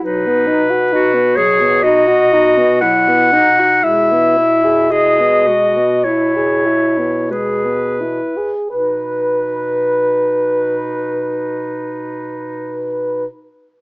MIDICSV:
0, 0, Header, 1, 5, 480
1, 0, Start_track
1, 0, Key_signature, 5, "major"
1, 0, Tempo, 895522
1, 18, Time_signature, 4, 2, 24, 8
1, 979, Tempo, 991736
1, 1459, Tempo, 1018676
1, 1939, Tempo, 1077199
1, 2419, Tempo, 1140684
1, 2899, Tempo, 1255230
1, 3379, Tempo, 1401869
1, 3859, Tempo, 1290323
1, 5757, End_track
2, 0, Start_track
2, 0, Title_t, "Clarinet"
2, 0, Program_c, 0, 71
2, 18, Note_on_c, 0, 71, 69
2, 728, Note_on_c, 0, 73, 61
2, 736, Note_off_c, 0, 71, 0
2, 977, Note_on_c, 0, 75, 69
2, 984, Note_off_c, 0, 73, 0
2, 1452, Note_off_c, 0, 75, 0
2, 1455, Note_on_c, 0, 78, 69
2, 1938, Note_on_c, 0, 76, 70
2, 1945, Note_off_c, 0, 78, 0
2, 2420, Note_on_c, 0, 75, 57
2, 2426, Note_off_c, 0, 76, 0
2, 2890, Note_on_c, 0, 73, 54
2, 2897, Note_off_c, 0, 75, 0
2, 3375, Note_off_c, 0, 73, 0
2, 3378, Note_on_c, 0, 71, 43
2, 3797, Note_off_c, 0, 71, 0
2, 3855, Note_on_c, 0, 71, 40
2, 5551, Note_off_c, 0, 71, 0
2, 5757, End_track
3, 0, Start_track
3, 0, Title_t, "Clarinet"
3, 0, Program_c, 1, 71
3, 27, Note_on_c, 1, 63, 49
3, 350, Note_off_c, 1, 63, 0
3, 494, Note_on_c, 1, 66, 54
3, 735, Note_on_c, 1, 68, 56
3, 743, Note_off_c, 1, 66, 0
3, 982, Note_on_c, 1, 66, 55
3, 989, Note_off_c, 1, 68, 0
3, 1457, Note_on_c, 1, 64, 48
3, 1464, Note_off_c, 1, 66, 0
3, 1697, Note_off_c, 1, 64, 0
3, 1699, Note_on_c, 1, 63, 43
3, 1938, Note_on_c, 1, 64, 45
3, 1945, Note_off_c, 1, 63, 0
3, 2417, Note_on_c, 1, 68, 50
3, 2423, Note_off_c, 1, 64, 0
3, 2653, Note_on_c, 1, 66, 42
3, 2659, Note_off_c, 1, 68, 0
3, 2896, Note_on_c, 1, 64, 40
3, 2902, Note_off_c, 1, 66, 0
3, 3381, Note_on_c, 1, 68, 33
3, 3386, Note_off_c, 1, 64, 0
3, 3623, Note_off_c, 1, 68, 0
3, 3859, Note_on_c, 1, 63, 30
3, 5555, Note_off_c, 1, 63, 0
3, 5757, End_track
4, 0, Start_track
4, 0, Title_t, "Alto saxophone"
4, 0, Program_c, 2, 65
4, 19, Note_on_c, 2, 54, 41
4, 142, Note_on_c, 2, 59, 43
4, 150, Note_off_c, 2, 54, 0
4, 253, Note_on_c, 2, 63, 44
4, 261, Note_off_c, 2, 59, 0
4, 375, Note_on_c, 2, 66, 46
4, 383, Note_off_c, 2, 63, 0
4, 494, Note_on_c, 2, 63, 46
4, 503, Note_off_c, 2, 66, 0
4, 611, Note_on_c, 2, 59, 41
4, 619, Note_off_c, 2, 63, 0
4, 738, Note_on_c, 2, 54, 41
4, 746, Note_off_c, 2, 59, 0
4, 862, Note_on_c, 2, 59, 36
4, 870, Note_off_c, 2, 54, 0
4, 983, Note_off_c, 2, 59, 0
4, 988, Note_on_c, 2, 63, 40
4, 1100, Note_on_c, 2, 66, 46
4, 1107, Note_off_c, 2, 63, 0
4, 1224, Note_on_c, 2, 63, 45
4, 1231, Note_off_c, 2, 66, 0
4, 1343, Note_on_c, 2, 59, 40
4, 1350, Note_off_c, 2, 63, 0
4, 1460, Note_on_c, 2, 54, 42
4, 1467, Note_off_c, 2, 59, 0
4, 1582, Note_on_c, 2, 59, 41
4, 1589, Note_off_c, 2, 54, 0
4, 1701, Note_on_c, 2, 63, 47
4, 1708, Note_off_c, 2, 59, 0
4, 1825, Note_on_c, 2, 66, 41
4, 1832, Note_off_c, 2, 63, 0
4, 1942, Note_off_c, 2, 66, 0
4, 1945, Note_on_c, 2, 56, 41
4, 2065, Note_on_c, 2, 59, 42
4, 2071, Note_off_c, 2, 56, 0
4, 2178, Note_on_c, 2, 64, 38
4, 2184, Note_off_c, 2, 59, 0
4, 2297, Note_on_c, 2, 68, 39
4, 2304, Note_off_c, 2, 64, 0
4, 2418, Note_on_c, 2, 64, 42
4, 2424, Note_off_c, 2, 68, 0
4, 2538, Note_on_c, 2, 59, 37
4, 2544, Note_off_c, 2, 64, 0
4, 2656, Note_on_c, 2, 56, 33
4, 2662, Note_off_c, 2, 59, 0
4, 2779, Note_on_c, 2, 59, 31
4, 2786, Note_off_c, 2, 56, 0
4, 2898, Note_off_c, 2, 59, 0
4, 2900, Note_on_c, 2, 64, 35
4, 3015, Note_on_c, 2, 68, 40
4, 3020, Note_off_c, 2, 64, 0
4, 3131, Note_on_c, 2, 64, 36
4, 3136, Note_off_c, 2, 68, 0
4, 3252, Note_on_c, 2, 59, 30
4, 3258, Note_off_c, 2, 64, 0
4, 3377, Note_on_c, 2, 56, 27
4, 3382, Note_off_c, 2, 59, 0
4, 3494, Note_on_c, 2, 59, 27
4, 3499, Note_off_c, 2, 56, 0
4, 3618, Note_on_c, 2, 64, 32
4, 3623, Note_off_c, 2, 59, 0
4, 3742, Note_on_c, 2, 68, 28
4, 3747, Note_off_c, 2, 64, 0
4, 3854, Note_off_c, 2, 68, 0
4, 3856, Note_on_c, 2, 71, 33
4, 5551, Note_off_c, 2, 71, 0
4, 5757, End_track
5, 0, Start_track
5, 0, Title_t, "Bass clarinet"
5, 0, Program_c, 3, 71
5, 24, Note_on_c, 3, 47, 52
5, 1922, Note_off_c, 3, 47, 0
5, 1939, Note_on_c, 3, 47, 54
5, 3686, Note_off_c, 3, 47, 0
5, 3857, Note_on_c, 3, 47, 37
5, 5553, Note_off_c, 3, 47, 0
5, 5757, End_track
0, 0, End_of_file